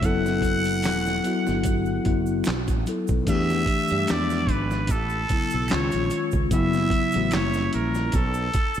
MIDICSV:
0, 0, Header, 1, 5, 480
1, 0, Start_track
1, 0, Tempo, 810811
1, 15, Time_signature, 4, 2, 24, 8
1, 5210, End_track
2, 0, Start_track
2, 0, Title_t, "Muted trumpet"
2, 0, Program_c, 0, 59
2, 32, Note_on_c, 0, 78, 116
2, 1463, Note_off_c, 0, 78, 0
2, 1954, Note_on_c, 0, 76, 116
2, 2436, Note_on_c, 0, 74, 105
2, 2445, Note_off_c, 0, 76, 0
2, 2671, Note_on_c, 0, 71, 86
2, 2679, Note_off_c, 0, 74, 0
2, 2910, Note_on_c, 0, 69, 107
2, 2919, Note_off_c, 0, 71, 0
2, 3390, Note_on_c, 0, 73, 93
2, 3399, Note_off_c, 0, 69, 0
2, 3751, Note_off_c, 0, 73, 0
2, 3868, Note_on_c, 0, 76, 105
2, 4346, Note_on_c, 0, 73, 101
2, 4355, Note_off_c, 0, 76, 0
2, 4580, Note_off_c, 0, 73, 0
2, 4585, Note_on_c, 0, 70, 85
2, 4825, Note_on_c, 0, 69, 104
2, 4834, Note_off_c, 0, 70, 0
2, 5210, Note_off_c, 0, 69, 0
2, 5210, End_track
3, 0, Start_track
3, 0, Title_t, "Tine electric piano"
3, 0, Program_c, 1, 4
3, 0, Control_c, 1, 64, 127
3, 11, Note_on_c, 1, 54, 94
3, 19, Note_on_c, 1, 59, 80
3, 23, Control_c, 1, 64, 0
3, 27, Note_on_c, 1, 64, 86
3, 33, Note_on_c, 1, 69, 98
3, 118, Control_c, 1, 64, 127
3, 589, Note_off_c, 1, 54, 0
3, 592, Note_off_c, 1, 59, 0
3, 596, Note_off_c, 1, 64, 0
3, 599, Note_off_c, 1, 69, 0
3, 728, Note_on_c, 1, 54, 77
3, 737, Note_on_c, 1, 59, 71
3, 745, Note_on_c, 1, 64, 68
3, 751, Note_on_c, 1, 66, 78
3, 1118, Note_off_c, 1, 54, 0
3, 1122, Note_off_c, 1, 59, 0
3, 1126, Note_off_c, 1, 64, 0
3, 1129, Note_off_c, 1, 66, 0
3, 1209, Note_on_c, 1, 54, 74
3, 1215, Note_on_c, 1, 59, 68
3, 1224, Note_on_c, 1, 64, 64
3, 1231, Note_on_c, 1, 66, 74
3, 1452, Note_off_c, 1, 54, 0
3, 1455, Note_off_c, 1, 59, 0
3, 1459, Note_off_c, 1, 64, 0
3, 1461, Control_c, 1, 64, 0
3, 1463, Note_off_c, 1, 66, 0
3, 1561, Control_c, 1, 64, 127
3, 1688, Note_on_c, 1, 54, 66
3, 1693, Note_on_c, 1, 59, 59
3, 1703, Note_on_c, 1, 64, 64
3, 1711, Note_on_c, 1, 69, 66
3, 1884, Note_off_c, 1, 54, 0
3, 1887, Note_off_c, 1, 59, 0
3, 1892, Note_off_c, 1, 64, 0
3, 1896, Note_off_c, 1, 69, 0
3, 1926, Note_on_c, 1, 52, 97
3, 1933, Note_on_c, 1, 57, 80
3, 1940, Note_on_c, 1, 62, 86
3, 1941, Control_c, 1, 64, 0
3, 1948, Note_on_c, 1, 67, 94
3, 2043, Control_c, 1, 64, 127
3, 2218, Note_off_c, 1, 52, 0
3, 2222, Note_off_c, 1, 57, 0
3, 2225, Note_off_c, 1, 62, 0
3, 2229, Note_off_c, 1, 67, 0
3, 2297, Note_on_c, 1, 52, 66
3, 2305, Note_on_c, 1, 57, 61
3, 2314, Note_on_c, 1, 62, 62
3, 2323, Note_on_c, 1, 67, 75
3, 2410, Note_on_c, 1, 53, 68
3, 2411, Note_off_c, 1, 52, 0
3, 2416, Note_off_c, 1, 57, 0
3, 2420, Note_off_c, 1, 62, 0
3, 2421, Note_on_c, 1, 56, 71
3, 2422, Control_c, 1, 64, 0
3, 2424, Note_off_c, 1, 67, 0
3, 2426, Note_on_c, 1, 59, 58
3, 2435, Note_on_c, 1, 62, 72
3, 2542, Control_c, 1, 64, 127
3, 2803, Note_off_c, 1, 53, 0
3, 2808, Note_off_c, 1, 56, 0
3, 2811, Note_off_c, 1, 59, 0
3, 2815, Note_off_c, 1, 62, 0
3, 2901, Control_c, 1, 64, 0
3, 3019, Control_c, 1, 64, 127
3, 3129, Note_on_c, 1, 49, 63
3, 3137, Note_on_c, 1, 54, 51
3, 3144, Note_on_c, 1, 59, 59
3, 3154, Note_on_c, 1, 64, 66
3, 3366, Note_on_c, 1, 51, 72
3, 3372, Note_off_c, 1, 49, 0
3, 3374, Note_on_c, 1, 56, 63
3, 3376, Note_off_c, 1, 54, 0
3, 3379, Note_off_c, 1, 59, 0
3, 3381, Control_c, 1, 64, 0
3, 3381, Note_on_c, 1, 61, 59
3, 3384, Note_off_c, 1, 64, 0
3, 3389, Note_on_c, 1, 65, 85
3, 3475, Control_c, 1, 64, 127
3, 3761, Note_off_c, 1, 51, 0
3, 3765, Note_off_c, 1, 56, 0
3, 3768, Note_off_c, 1, 61, 0
3, 3773, Note_off_c, 1, 65, 0
3, 3845, Note_on_c, 1, 49, 89
3, 3853, Note_on_c, 1, 54, 91
3, 3860, Note_on_c, 1, 59, 90
3, 3863, Control_c, 1, 64, 0
3, 3867, Note_on_c, 1, 64, 112
3, 3970, Control_c, 1, 64, 127
3, 4138, Note_off_c, 1, 49, 0
3, 4141, Note_off_c, 1, 54, 0
3, 4145, Note_off_c, 1, 59, 0
3, 4148, Note_off_c, 1, 64, 0
3, 4218, Note_on_c, 1, 49, 63
3, 4225, Note_on_c, 1, 54, 61
3, 4234, Note_on_c, 1, 59, 67
3, 4241, Note_on_c, 1, 66, 70
3, 4328, Note_on_c, 1, 55, 70
3, 4332, Note_off_c, 1, 49, 0
3, 4335, Note_off_c, 1, 54, 0
3, 4336, Note_on_c, 1, 58, 62
3, 4340, Note_off_c, 1, 59, 0
3, 4341, Control_c, 1, 64, 0
3, 4343, Note_on_c, 1, 61, 62
3, 4344, Note_off_c, 1, 66, 0
3, 4351, Note_on_c, 1, 64, 78
3, 4448, Control_c, 1, 64, 127
3, 4722, Note_off_c, 1, 55, 0
3, 4726, Note_off_c, 1, 58, 0
3, 4729, Note_off_c, 1, 61, 0
3, 4733, Note_off_c, 1, 64, 0
3, 4823, Control_c, 1, 64, 0
3, 4943, Control_c, 1, 64, 127
3, 5210, End_track
4, 0, Start_track
4, 0, Title_t, "Fretless electric bass"
4, 0, Program_c, 2, 35
4, 22, Note_on_c, 2, 30, 103
4, 508, Note_off_c, 2, 30, 0
4, 508, Note_on_c, 2, 28, 84
4, 706, Note_off_c, 2, 28, 0
4, 878, Note_on_c, 2, 31, 81
4, 1171, Note_off_c, 2, 31, 0
4, 1227, Note_on_c, 2, 30, 72
4, 1426, Note_off_c, 2, 30, 0
4, 1469, Note_on_c, 2, 35, 91
4, 1572, Note_off_c, 2, 35, 0
4, 1592, Note_on_c, 2, 33, 87
4, 1683, Note_off_c, 2, 33, 0
4, 1838, Note_on_c, 2, 35, 89
4, 1926, Note_off_c, 2, 35, 0
4, 1941, Note_on_c, 2, 40, 102
4, 2142, Note_off_c, 2, 40, 0
4, 2316, Note_on_c, 2, 43, 77
4, 2406, Note_off_c, 2, 43, 0
4, 2433, Note_on_c, 2, 40, 82
4, 2629, Note_off_c, 2, 40, 0
4, 2654, Note_on_c, 2, 32, 82
4, 2902, Note_off_c, 2, 32, 0
4, 2902, Note_on_c, 2, 33, 103
4, 3103, Note_off_c, 2, 33, 0
4, 3279, Note_on_c, 2, 35, 77
4, 3367, Note_off_c, 2, 35, 0
4, 3390, Note_on_c, 2, 37, 88
4, 3493, Note_off_c, 2, 37, 0
4, 3517, Note_on_c, 2, 34, 81
4, 3606, Note_off_c, 2, 34, 0
4, 3755, Note_on_c, 2, 37, 82
4, 3845, Note_off_c, 2, 37, 0
4, 3861, Note_on_c, 2, 30, 105
4, 4062, Note_off_c, 2, 30, 0
4, 4237, Note_on_c, 2, 33, 92
4, 4326, Note_off_c, 2, 33, 0
4, 4347, Note_on_c, 2, 30, 92
4, 4546, Note_off_c, 2, 30, 0
4, 4589, Note_on_c, 2, 34, 76
4, 4787, Note_off_c, 2, 34, 0
4, 4822, Note_on_c, 2, 35, 106
4, 5023, Note_off_c, 2, 35, 0
4, 5210, End_track
5, 0, Start_track
5, 0, Title_t, "Drums"
5, 15, Note_on_c, 9, 36, 94
5, 15, Note_on_c, 9, 42, 71
5, 22, Note_on_c, 9, 82, 55
5, 74, Note_off_c, 9, 42, 0
5, 75, Note_off_c, 9, 36, 0
5, 81, Note_off_c, 9, 82, 0
5, 152, Note_on_c, 9, 82, 43
5, 153, Note_on_c, 9, 38, 28
5, 212, Note_off_c, 9, 38, 0
5, 212, Note_off_c, 9, 82, 0
5, 247, Note_on_c, 9, 36, 75
5, 252, Note_on_c, 9, 42, 60
5, 259, Note_on_c, 9, 82, 44
5, 307, Note_off_c, 9, 36, 0
5, 312, Note_off_c, 9, 42, 0
5, 318, Note_off_c, 9, 82, 0
5, 381, Note_on_c, 9, 82, 51
5, 389, Note_on_c, 9, 42, 44
5, 440, Note_off_c, 9, 82, 0
5, 448, Note_off_c, 9, 42, 0
5, 490, Note_on_c, 9, 42, 68
5, 497, Note_on_c, 9, 26, 65
5, 497, Note_on_c, 9, 82, 54
5, 506, Note_on_c, 9, 38, 81
5, 513, Note_on_c, 9, 39, 69
5, 550, Note_off_c, 9, 42, 0
5, 556, Note_off_c, 9, 26, 0
5, 556, Note_off_c, 9, 82, 0
5, 565, Note_off_c, 9, 38, 0
5, 572, Note_off_c, 9, 39, 0
5, 627, Note_on_c, 9, 82, 45
5, 635, Note_on_c, 9, 38, 30
5, 687, Note_off_c, 9, 82, 0
5, 695, Note_off_c, 9, 38, 0
5, 736, Note_on_c, 9, 42, 61
5, 737, Note_on_c, 9, 82, 45
5, 796, Note_off_c, 9, 42, 0
5, 796, Note_off_c, 9, 82, 0
5, 868, Note_on_c, 9, 82, 41
5, 869, Note_on_c, 9, 38, 33
5, 928, Note_off_c, 9, 38, 0
5, 928, Note_off_c, 9, 82, 0
5, 968, Note_on_c, 9, 42, 82
5, 977, Note_on_c, 9, 36, 86
5, 977, Note_on_c, 9, 82, 57
5, 1027, Note_off_c, 9, 42, 0
5, 1036, Note_off_c, 9, 36, 0
5, 1036, Note_off_c, 9, 82, 0
5, 1099, Note_on_c, 9, 82, 40
5, 1158, Note_off_c, 9, 82, 0
5, 1214, Note_on_c, 9, 42, 57
5, 1220, Note_on_c, 9, 36, 88
5, 1273, Note_off_c, 9, 42, 0
5, 1279, Note_off_c, 9, 36, 0
5, 1340, Note_on_c, 9, 82, 50
5, 1399, Note_off_c, 9, 82, 0
5, 1445, Note_on_c, 9, 26, 55
5, 1445, Note_on_c, 9, 82, 56
5, 1455, Note_on_c, 9, 42, 73
5, 1463, Note_on_c, 9, 38, 99
5, 1469, Note_on_c, 9, 39, 83
5, 1504, Note_off_c, 9, 26, 0
5, 1504, Note_off_c, 9, 82, 0
5, 1514, Note_off_c, 9, 42, 0
5, 1522, Note_off_c, 9, 38, 0
5, 1529, Note_off_c, 9, 39, 0
5, 1585, Note_on_c, 9, 82, 46
5, 1586, Note_on_c, 9, 36, 92
5, 1587, Note_on_c, 9, 42, 45
5, 1644, Note_off_c, 9, 82, 0
5, 1645, Note_off_c, 9, 36, 0
5, 1646, Note_off_c, 9, 42, 0
5, 1696, Note_on_c, 9, 82, 50
5, 1700, Note_on_c, 9, 42, 62
5, 1755, Note_off_c, 9, 82, 0
5, 1759, Note_off_c, 9, 42, 0
5, 1821, Note_on_c, 9, 82, 47
5, 1830, Note_on_c, 9, 36, 94
5, 1880, Note_off_c, 9, 82, 0
5, 1889, Note_off_c, 9, 36, 0
5, 1934, Note_on_c, 9, 49, 81
5, 1935, Note_on_c, 9, 36, 95
5, 1935, Note_on_c, 9, 42, 66
5, 1940, Note_on_c, 9, 82, 58
5, 1993, Note_off_c, 9, 49, 0
5, 1994, Note_off_c, 9, 36, 0
5, 1994, Note_off_c, 9, 42, 0
5, 1999, Note_off_c, 9, 82, 0
5, 2070, Note_on_c, 9, 82, 46
5, 2075, Note_on_c, 9, 38, 34
5, 2129, Note_off_c, 9, 82, 0
5, 2134, Note_off_c, 9, 38, 0
5, 2168, Note_on_c, 9, 36, 71
5, 2175, Note_on_c, 9, 42, 62
5, 2227, Note_off_c, 9, 36, 0
5, 2234, Note_off_c, 9, 42, 0
5, 2297, Note_on_c, 9, 82, 51
5, 2312, Note_on_c, 9, 42, 40
5, 2356, Note_off_c, 9, 82, 0
5, 2371, Note_off_c, 9, 42, 0
5, 2412, Note_on_c, 9, 42, 71
5, 2417, Note_on_c, 9, 26, 61
5, 2417, Note_on_c, 9, 82, 63
5, 2427, Note_on_c, 9, 38, 88
5, 2434, Note_on_c, 9, 39, 70
5, 2471, Note_off_c, 9, 42, 0
5, 2476, Note_off_c, 9, 26, 0
5, 2476, Note_off_c, 9, 82, 0
5, 2487, Note_off_c, 9, 38, 0
5, 2493, Note_off_c, 9, 39, 0
5, 2546, Note_on_c, 9, 82, 47
5, 2556, Note_on_c, 9, 38, 32
5, 2605, Note_off_c, 9, 82, 0
5, 2615, Note_off_c, 9, 38, 0
5, 2647, Note_on_c, 9, 36, 81
5, 2656, Note_on_c, 9, 42, 71
5, 2706, Note_off_c, 9, 36, 0
5, 2715, Note_off_c, 9, 42, 0
5, 2787, Note_on_c, 9, 82, 41
5, 2788, Note_on_c, 9, 38, 36
5, 2846, Note_off_c, 9, 82, 0
5, 2848, Note_off_c, 9, 38, 0
5, 2885, Note_on_c, 9, 42, 84
5, 2896, Note_on_c, 9, 36, 90
5, 2896, Note_on_c, 9, 82, 62
5, 2945, Note_off_c, 9, 42, 0
5, 2955, Note_off_c, 9, 36, 0
5, 2955, Note_off_c, 9, 82, 0
5, 3017, Note_on_c, 9, 82, 41
5, 3076, Note_off_c, 9, 82, 0
5, 3132, Note_on_c, 9, 82, 46
5, 3133, Note_on_c, 9, 42, 66
5, 3139, Note_on_c, 9, 36, 87
5, 3192, Note_off_c, 9, 42, 0
5, 3192, Note_off_c, 9, 82, 0
5, 3198, Note_off_c, 9, 36, 0
5, 3258, Note_on_c, 9, 82, 54
5, 3317, Note_off_c, 9, 82, 0
5, 3363, Note_on_c, 9, 26, 55
5, 3363, Note_on_c, 9, 82, 61
5, 3373, Note_on_c, 9, 42, 66
5, 3382, Note_on_c, 9, 38, 100
5, 3388, Note_on_c, 9, 39, 83
5, 3423, Note_off_c, 9, 26, 0
5, 3423, Note_off_c, 9, 82, 0
5, 3433, Note_off_c, 9, 42, 0
5, 3441, Note_off_c, 9, 38, 0
5, 3447, Note_off_c, 9, 39, 0
5, 3501, Note_on_c, 9, 82, 43
5, 3506, Note_on_c, 9, 42, 52
5, 3561, Note_off_c, 9, 82, 0
5, 3565, Note_off_c, 9, 42, 0
5, 3613, Note_on_c, 9, 82, 50
5, 3617, Note_on_c, 9, 42, 64
5, 3672, Note_off_c, 9, 82, 0
5, 3676, Note_off_c, 9, 42, 0
5, 3738, Note_on_c, 9, 82, 45
5, 3748, Note_on_c, 9, 36, 89
5, 3797, Note_off_c, 9, 82, 0
5, 3808, Note_off_c, 9, 36, 0
5, 3854, Note_on_c, 9, 36, 99
5, 3854, Note_on_c, 9, 42, 81
5, 3855, Note_on_c, 9, 82, 60
5, 3913, Note_off_c, 9, 36, 0
5, 3913, Note_off_c, 9, 42, 0
5, 3915, Note_off_c, 9, 82, 0
5, 3986, Note_on_c, 9, 82, 44
5, 3994, Note_on_c, 9, 38, 30
5, 4045, Note_off_c, 9, 82, 0
5, 4053, Note_off_c, 9, 38, 0
5, 4086, Note_on_c, 9, 36, 84
5, 4093, Note_on_c, 9, 42, 57
5, 4146, Note_off_c, 9, 36, 0
5, 4152, Note_off_c, 9, 42, 0
5, 4214, Note_on_c, 9, 82, 52
5, 4227, Note_on_c, 9, 42, 51
5, 4273, Note_off_c, 9, 82, 0
5, 4286, Note_off_c, 9, 42, 0
5, 4327, Note_on_c, 9, 42, 75
5, 4333, Note_on_c, 9, 26, 60
5, 4333, Note_on_c, 9, 82, 60
5, 4342, Note_on_c, 9, 38, 91
5, 4349, Note_on_c, 9, 39, 79
5, 4386, Note_off_c, 9, 42, 0
5, 4392, Note_off_c, 9, 26, 0
5, 4392, Note_off_c, 9, 82, 0
5, 4401, Note_off_c, 9, 38, 0
5, 4408, Note_off_c, 9, 39, 0
5, 4461, Note_on_c, 9, 82, 48
5, 4474, Note_on_c, 9, 38, 31
5, 4521, Note_off_c, 9, 82, 0
5, 4533, Note_off_c, 9, 38, 0
5, 4574, Note_on_c, 9, 42, 70
5, 4633, Note_off_c, 9, 42, 0
5, 4704, Note_on_c, 9, 82, 45
5, 4709, Note_on_c, 9, 38, 31
5, 4764, Note_off_c, 9, 82, 0
5, 4768, Note_off_c, 9, 38, 0
5, 4808, Note_on_c, 9, 42, 82
5, 4815, Note_on_c, 9, 82, 58
5, 4816, Note_on_c, 9, 36, 95
5, 4867, Note_off_c, 9, 42, 0
5, 4874, Note_off_c, 9, 82, 0
5, 4875, Note_off_c, 9, 36, 0
5, 4937, Note_on_c, 9, 82, 44
5, 4996, Note_off_c, 9, 82, 0
5, 5052, Note_on_c, 9, 82, 48
5, 5053, Note_on_c, 9, 42, 71
5, 5059, Note_on_c, 9, 36, 105
5, 5111, Note_off_c, 9, 82, 0
5, 5112, Note_off_c, 9, 42, 0
5, 5118, Note_off_c, 9, 36, 0
5, 5177, Note_on_c, 9, 82, 53
5, 5210, Note_off_c, 9, 82, 0
5, 5210, End_track
0, 0, End_of_file